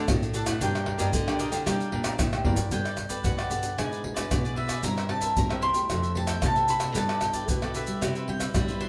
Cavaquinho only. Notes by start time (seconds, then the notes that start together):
0.33 D4 A4 D5 F#5
0.45 A4 D5 F#5
0.60 D4 A#4 D5 G5
0.85 D4 A#4 D5 G5
0.97 D4 A#4 D5 G5
1.27 A#4 D5 G5
1.38 D4 A#4 D5 G5
1.51 A#4 D5 G5
1.65 D4 A#4 D5 G5
1.92 D4 A#4 D5 G5
2.03 D4 A#4 D5 G5
2.44 D4 A#4 D5 G5
2.57 A#4 D5 G5
2.71 F#4 G4 B4 D5
2.85 G4 B4 D5
2.97 muted cavaquinho stroke
3.09 G4 B4 D5
3.23 F#4 G4 B4 D5
3.37 G4 B4 D5
3.49 F#4 G4 B4 D5
3.77 E4 G#4 B4 D5
3.91 G#4 B4 D5
4.02 muted cavaquinho stroke
4.14 G#4 B4 D5
4.43 G#4 B4 D5
4.54 E4 G#4 B4 D5
4.67 G#4 B4 D5
4.81 E4 A#4 C5 E5
4.96 A#4 C5 E5
5.08 muted cavaquinho stroke
5.21 A#4 C5 E5
5.36 E4 A#4 C5 E5
5.49 A#4 C5 E5
5.61 E4 A#4 C5 E5
5.89 F4 A4 C5 E5
6.02 A4 C5 E5
6.15 muted cavaquinho stroke
6.27 A4 C5 E5
6.56 A4 C5 E5
6.67 F4 A4 C5 E5
6.80 A4 C5 E5
6.94 E4 G4 B4 D5
7.09 G4 B4 D5
7.20 muted cavaquinho stroke
7.33 G4 B4 D5
7.49 E4 G4 B4 D5
7.62 G4 B4 D5
7.74 E4 G4 B4 D5
8.02 E4 B4 C5 E5
8.16 B4 C5 E5
8.29 muted cavaquinho stroke
8.39 B4 C5 E5
8.68 B4 C5 E5
8.80 E4 B4 C5 E5